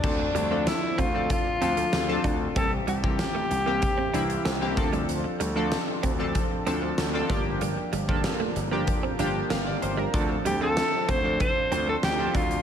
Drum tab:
CC |x---------------|----------------|----------------|----------------|
HH |--x-x-x-x-xxx-x-|x-x-x-x-x-xxx-xx|x-x-x-x-x-x-x-x-|x-x-x-x-x-x-x-x-|
SD |----o-------o---|----o-------o---|----o-------o---|----o-------o---|
BD |o-----o-o-----o-|o--o----o-----o-|------o-o-----o-|---o----o-------|

CC |----------------|
HH |x-x-x-x-x-x-x-xx|
SD |----o-------o---|
BD |o-----o-o-----o-|